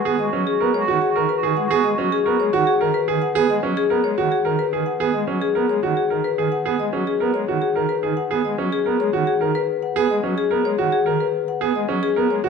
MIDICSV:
0, 0, Header, 1, 5, 480
1, 0, Start_track
1, 0, Key_signature, 5, "minor"
1, 0, Tempo, 550459
1, 1127, Time_signature, 3, 2, 24, 8
1, 10891, End_track
2, 0, Start_track
2, 0, Title_t, "Marimba"
2, 0, Program_c, 0, 12
2, 167, Note_on_c, 0, 75, 60
2, 323, Note_off_c, 0, 75, 0
2, 409, Note_on_c, 0, 68, 76
2, 563, Note_off_c, 0, 68, 0
2, 649, Note_on_c, 0, 73, 71
2, 803, Note_off_c, 0, 73, 0
2, 888, Note_on_c, 0, 68, 63
2, 1043, Note_off_c, 0, 68, 0
2, 1126, Note_on_c, 0, 71, 74
2, 1282, Note_off_c, 0, 71, 0
2, 1367, Note_on_c, 0, 78, 63
2, 1523, Note_off_c, 0, 78, 0
2, 1605, Note_on_c, 0, 75, 67
2, 1762, Note_off_c, 0, 75, 0
2, 1851, Note_on_c, 0, 68, 87
2, 2004, Note_off_c, 0, 68, 0
2, 2090, Note_on_c, 0, 73, 69
2, 2244, Note_off_c, 0, 73, 0
2, 2328, Note_on_c, 0, 68, 72
2, 2483, Note_off_c, 0, 68, 0
2, 2565, Note_on_c, 0, 71, 86
2, 2722, Note_off_c, 0, 71, 0
2, 2805, Note_on_c, 0, 78, 70
2, 2962, Note_off_c, 0, 78, 0
2, 3051, Note_on_c, 0, 75, 70
2, 3204, Note_off_c, 0, 75, 0
2, 3287, Note_on_c, 0, 68, 92
2, 3443, Note_off_c, 0, 68, 0
2, 3523, Note_on_c, 0, 73, 75
2, 3681, Note_off_c, 0, 73, 0
2, 3765, Note_on_c, 0, 68, 69
2, 3922, Note_off_c, 0, 68, 0
2, 4002, Note_on_c, 0, 71, 80
2, 4161, Note_off_c, 0, 71, 0
2, 4239, Note_on_c, 0, 78, 58
2, 4400, Note_off_c, 0, 78, 0
2, 4480, Note_on_c, 0, 75, 53
2, 4640, Note_off_c, 0, 75, 0
2, 4722, Note_on_c, 0, 68, 83
2, 4881, Note_off_c, 0, 68, 0
2, 4966, Note_on_c, 0, 73, 61
2, 5122, Note_off_c, 0, 73, 0
2, 5205, Note_on_c, 0, 68, 60
2, 5362, Note_off_c, 0, 68, 0
2, 5445, Note_on_c, 0, 71, 74
2, 5602, Note_off_c, 0, 71, 0
2, 5684, Note_on_c, 0, 78, 63
2, 5842, Note_off_c, 0, 78, 0
2, 5926, Note_on_c, 0, 75, 59
2, 6082, Note_off_c, 0, 75, 0
2, 6167, Note_on_c, 0, 68, 80
2, 6323, Note_off_c, 0, 68, 0
2, 6400, Note_on_c, 0, 73, 69
2, 6560, Note_off_c, 0, 73, 0
2, 6641, Note_on_c, 0, 68, 65
2, 6801, Note_off_c, 0, 68, 0
2, 6880, Note_on_c, 0, 71, 71
2, 7040, Note_off_c, 0, 71, 0
2, 7123, Note_on_c, 0, 78, 61
2, 7281, Note_off_c, 0, 78, 0
2, 7365, Note_on_c, 0, 75, 57
2, 7522, Note_off_c, 0, 75, 0
2, 7607, Note_on_c, 0, 68, 73
2, 7763, Note_off_c, 0, 68, 0
2, 7849, Note_on_c, 0, 73, 75
2, 8003, Note_off_c, 0, 73, 0
2, 8086, Note_on_c, 0, 68, 69
2, 8242, Note_off_c, 0, 68, 0
2, 8328, Note_on_c, 0, 71, 83
2, 8483, Note_off_c, 0, 71, 0
2, 8568, Note_on_c, 0, 78, 58
2, 8723, Note_off_c, 0, 78, 0
2, 8811, Note_on_c, 0, 75, 62
2, 8964, Note_off_c, 0, 75, 0
2, 9048, Note_on_c, 0, 68, 82
2, 9203, Note_off_c, 0, 68, 0
2, 9289, Note_on_c, 0, 73, 77
2, 9443, Note_off_c, 0, 73, 0
2, 9525, Note_on_c, 0, 68, 72
2, 9682, Note_off_c, 0, 68, 0
2, 9770, Note_on_c, 0, 71, 75
2, 9924, Note_off_c, 0, 71, 0
2, 10012, Note_on_c, 0, 78, 65
2, 10164, Note_off_c, 0, 78, 0
2, 10251, Note_on_c, 0, 75, 64
2, 10404, Note_off_c, 0, 75, 0
2, 10489, Note_on_c, 0, 68, 90
2, 10643, Note_off_c, 0, 68, 0
2, 10730, Note_on_c, 0, 73, 68
2, 10884, Note_off_c, 0, 73, 0
2, 10891, End_track
3, 0, Start_track
3, 0, Title_t, "Grand piano"
3, 0, Program_c, 1, 0
3, 46, Note_on_c, 1, 68, 81
3, 202, Note_off_c, 1, 68, 0
3, 287, Note_on_c, 1, 61, 62
3, 442, Note_off_c, 1, 61, 0
3, 527, Note_on_c, 1, 70, 62
3, 682, Note_off_c, 1, 70, 0
3, 767, Note_on_c, 1, 66, 83
3, 923, Note_off_c, 1, 66, 0
3, 1008, Note_on_c, 1, 70, 66
3, 1163, Note_off_c, 1, 70, 0
3, 1248, Note_on_c, 1, 68, 71
3, 1403, Note_off_c, 1, 68, 0
3, 1487, Note_on_c, 1, 68, 96
3, 1643, Note_off_c, 1, 68, 0
3, 1728, Note_on_c, 1, 61, 66
3, 1883, Note_off_c, 1, 61, 0
3, 1968, Note_on_c, 1, 70, 67
3, 2123, Note_off_c, 1, 70, 0
3, 2207, Note_on_c, 1, 66, 98
3, 2362, Note_off_c, 1, 66, 0
3, 2447, Note_on_c, 1, 70, 71
3, 2603, Note_off_c, 1, 70, 0
3, 2685, Note_on_c, 1, 68, 80
3, 2842, Note_off_c, 1, 68, 0
3, 2923, Note_on_c, 1, 68, 102
3, 3081, Note_off_c, 1, 68, 0
3, 3164, Note_on_c, 1, 61, 73
3, 3322, Note_off_c, 1, 61, 0
3, 3401, Note_on_c, 1, 70, 67
3, 3561, Note_off_c, 1, 70, 0
3, 3642, Note_on_c, 1, 66, 87
3, 3801, Note_off_c, 1, 66, 0
3, 3879, Note_on_c, 1, 70, 66
3, 4040, Note_off_c, 1, 70, 0
3, 4124, Note_on_c, 1, 68, 65
3, 4281, Note_off_c, 1, 68, 0
3, 4361, Note_on_c, 1, 68, 88
3, 4521, Note_off_c, 1, 68, 0
3, 4598, Note_on_c, 1, 61, 59
3, 4760, Note_off_c, 1, 61, 0
3, 4841, Note_on_c, 1, 70, 59
3, 5000, Note_off_c, 1, 70, 0
3, 5083, Note_on_c, 1, 66, 72
3, 5241, Note_off_c, 1, 66, 0
3, 5322, Note_on_c, 1, 70, 57
3, 5481, Note_off_c, 1, 70, 0
3, 5565, Note_on_c, 1, 68, 64
3, 5722, Note_off_c, 1, 68, 0
3, 5803, Note_on_c, 1, 68, 78
3, 5961, Note_off_c, 1, 68, 0
3, 6041, Note_on_c, 1, 61, 60
3, 6201, Note_off_c, 1, 61, 0
3, 6282, Note_on_c, 1, 70, 59
3, 6441, Note_off_c, 1, 70, 0
3, 6526, Note_on_c, 1, 66, 70
3, 6682, Note_off_c, 1, 66, 0
3, 6763, Note_on_c, 1, 70, 60
3, 6921, Note_off_c, 1, 70, 0
3, 7001, Note_on_c, 1, 68, 63
3, 7161, Note_off_c, 1, 68, 0
3, 7243, Note_on_c, 1, 68, 75
3, 7401, Note_off_c, 1, 68, 0
3, 7484, Note_on_c, 1, 61, 65
3, 7642, Note_off_c, 1, 61, 0
3, 7724, Note_on_c, 1, 70, 58
3, 7881, Note_off_c, 1, 70, 0
3, 7962, Note_on_c, 1, 66, 81
3, 8121, Note_off_c, 1, 66, 0
3, 8203, Note_on_c, 1, 70, 63
3, 8361, Note_off_c, 1, 70, 0
3, 8684, Note_on_c, 1, 68, 92
3, 8842, Note_off_c, 1, 68, 0
3, 8924, Note_on_c, 1, 61, 57
3, 9081, Note_off_c, 1, 61, 0
3, 9162, Note_on_c, 1, 70, 66
3, 9321, Note_off_c, 1, 70, 0
3, 9403, Note_on_c, 1, 66, 81
3, 9561, Note_off_c, 1, 66, 0
3, 9643, Note_on_c, 1, 70, 66
3, 9801, Note_off_c, 1, 70, 0
3, 10124, Note_on_c, 1, 68, 84
3, 10281, Note_off_c, 1, 68, 0
3, 10364, Note_on_c, 1, 61, 68
3, 10521, Note_off_c, 1, 61, 0
3, 10606, Note_on_c, 1, 70, 70
3, 10762, Note_off_c, 1, 70, 0
3, 10846, Note_on_c, 1, 66, 91
3, 10891, Note_off_c, 1, 66, 0
3, 10891, End_track
4, 0, Start_track
4, 0, Title_t, "Oboe"
4, 0, Program_c, 2, 68
4, 0, Note_on_c, 2, 66, 51
4, 118, Note_off_c, 2, 66, 0
4, 194, Note_on_c, 2, 66, 57
4, 368, Note_off_c, 2, 66, 0
4, 442, Note_on_c, 2, 66, 58
4, 617, Note_off_c, 2, 66, 0
4, 692, Note_on_c, 2, 66, 78
4, 867, Note_off_c, 2, 66, 0
4, 944, Note_on_c, 2, 66, 70
4, 1119, Note_off_c, 2, 66, 0
4, 1191, Note_on_c, 2, 66, 69
4, 1367, Note_off_c, 2, 66, 0
4, 1448, Note_on_c, 2, 66, 76
4, 1621, Note_off_c, 2, 66, 0
4, 1696, Note_on_c, 2, 66, 64
4, 1871, Note_off_c, 2, 66, 0
4, 1948, Note_on_c, 2, 66, 52
4, 2123, Note_off_c, 2, 66, 0
4, 2200, Note_on_c, 2, 66, 43
4, 2374, Note_off_c, 2, 66, 0
4, 10891, End_track
5, 0, Start_track
5, 0, Title_t, "Pipe organ"
5, 0, Program_c, 3, 19
5, 48, Note_on_c, 3, 59, 78
5, 138, Note_off_c, 3, 59, 0
5, 166, Note_on_c, 3, 56, 66
5, 256, Note_off_c, 3, 56, 0
5, 285, Note_on_c, 3, 54, 63
5, 375, Note_off_c, 3, 54, 0
5, 524, Note_on_c, 3, 59, 63
5, 615, Note_off_c, 3, 59, 0
5, 646, Note_on_c, 3, 56, 70
5, 736, Note_off_c, 3, 56, 0
5, 765, Note_on_c, 3, 51, 70
5, 856, Note_off_c, 3, 51, 0
5, 1008, Note_on_c, 3, 51, 59
5, 1097, Note_off_c, 3, 51, 0
5, 1248, Note_on_c, 3, 51, 72
5, 1337, Note_off_c, 3, 51, 0
5, 1371, Note_on_c, 3, 56, 70
5, 1459, Note_off_c, 3, 56, 0
5, 1489, Note_on_c, 3, 59, 92
5, 1578, Note_off_c, 3, 59, 0
5, 1609, Note_on_c, 3, 56, 69
5, 1698, Note_off_c, 3, 56, 0
5, 1731, Note_on_c, 3, 54, 66
5, 1819, Note_off_c, 3, 54, 0
5, 1969, Note_on_c, 3, 59, 74
5, 2058, Note_off_c, 3, 59, 0
5, 2090, Note_on_c, 3, 56, 69
5, 2179, Note_off_c, 3, 56, 0
5, 2205, Note_on_c, 3, 51, 75
5, 2296, Note_off_c, 3, 51, 0
5, 2446, Note_on_c, 3, 51, 70
5, 2536, Note_off_c, 3, 51, 0
5, 2688, Note_on_c, 3, 51, 85
5, 2778, Note_off_c, 3, 51, 0
5, 2925, Note_on_c, 3, 59, 100
5, 3016, Note_off_c, 3, 59, 0
5, 3041, Note_on_c, 3, 56, 74
5, 3133, Note_off_c, 3, 56, 0
5, 3164, Note_on_c, 3, 54, 77
5, 3255, Note_off_c, 3, 54, 0
5, 3402, Note_on_c, 3, 59, 74
5, 3494, Note_off_c, 3, 59, 0
5, 3526, Note_on_c, 3, 56, 68
5, 3616, Note_off_c, 3, 56, 0
5, 3648, Note_on_c, 3, 51, 67
5, 3737, Note_off_c, 3, 51, 0
5, 3889, Note_on_c, 3, 51, 64
5, 3978, Note_off_c, 3, 51, 0
5, 4129, Note_on_c, 3, 51, 70
5, 4218, Note_off_c, 3, 51, 0
5, 4365, Note_on_c, 3, 59, 94
5, 4455, Note_off_c, 3, 59, 0
5, 4484, Note_on_c, 3, 56, 66
5, 4575, Note_off_c, 3, 56, 0
5, 4601, Note_on_c, 3, 54, 63
5, 4693, Note_off_c, 3, 54, 0
5, 4842, Note_on_c, 3, 59, 63
5, 4934, Note_off_c, 3, 59, 0
5, 4962, Note_on_c, 3, 56, 62
5, 5054, Note_off_c, 3, 56, 0
5, 5082, Note_on_c, 3, 51, 73
5, 5174, Note_off_c, 3, 51, 0
5, 5322, Note_on_c, 3, 51, 56
5, 5414, Note_off_c, 3, 51, 0
5, 5563, Note_on_c, 3, 51, 64
5, 5654, Note_off_c, 3, 51, 0
5, 5802, Note_on_c, 3, 59, 84
5, 5893, Note_off_c, 3, 59, 0
5, 5922, Note_on_c, 3, 56, 59
5, 6014, Note_off_c, 3, 56, 0
5, 6042, Note_on_c, 3, 54, 63
5, 6133, Note_off_c, 3, 54, 0
5, 6280, Note_on_c, 3, 59, 61
5, 6372, Note_off_c, 3, 59, 0
5, 6400, Note_on_c, 3, 56, 66
5, 6492, Note_off_c, 3, 56, 0
5, 6523, Note_on_c, 3, 51, 65
5, 6614, Note_off_c, 3, 51, 0
5, 6765, Note_on_c, 3, 51, 65
5, 6855, Note_off_c, 3, 51, 0
5, 7006, Note_on_c, 3, 51, 62
5, 7096, Note_off_c, 3, 51, 0
5, 7246, Note_on_c, 3, 59, 84
5, 7336, Note_off_c, 3, 59, 0
5, 7369, Note_on_c, 3, 56, 61
5, 7458, Note_off_c, 3, 56, 0
5, 7483, Note_on_c, 3, 54, 65
5, 7574, Note_off_c, 3, 54, 0
5, 7724, Note_on_c, 3, 59, 66
5, 7815, Note_off_c, 3, 59, 0
5, 7842, Note_on_c, 3, 56, 67
5, 7934, Note_off_c, 3, 56, 0
5, 7961, Note_on_c, 3, 51, 80
5, 8053, Note_off_c, 3, 51, 0
5, 8208, Note_on_c, 3, 51, 59
5, 8297, Note_off_c, 3, 51, 0
5, 8685, Note_on_c, 3, 59, 89
5, 8776, Note_off_c, 3, 59, 0
5, 8806, Note_on_c, 3, 56, 68
5, 8896, Note_off_c, 3, 56, 0
5, 8925, Note_on_c, 3, 54, 66
5, 9015, Note_off_c, 3, 54, 0
5, 9163, Note_on_c, 3, 59, 65
5, 9254, Note_off_c, 3, 59, 0
5, 9284, Note_on_c, 3, 56, 65
5, 9375, Note_off_c, 3, 56, 0
5, 9404, Note_on_c, 3, 51, 72
5, 9495, Note_off_c, 3, 51, 0
5, 9647, Note_on_c, 3, 51, 65
5, 9737, Note_off_c, 3, 51, 0
5, 10128, Note_on_c, 3, 59, 93
5, 10217, Note_off_c, 3, 59, 0
5, 10247, Note_on_c, 3, 56, 68
5, 10337, Note_off_c, 3, 56, 0
5, 10366, Note_on_c, 3, 54, 70
5, 10456, Note_off_c, 3, 54, 0
5, 10604, Note_on_c, 3, 59, 78
5, 10695, Note_off_c, 3, 59, 0
5, 10723, Note_on_c, 3, 56, 73
5, 10814, Note_off_c, 3, 56, 0
5, 10843, Note_on_c, 3, 51, 77
5, 10891, Note_off_c, 3, 51, 0
5, 10891, End_track
0, 0, End_of_file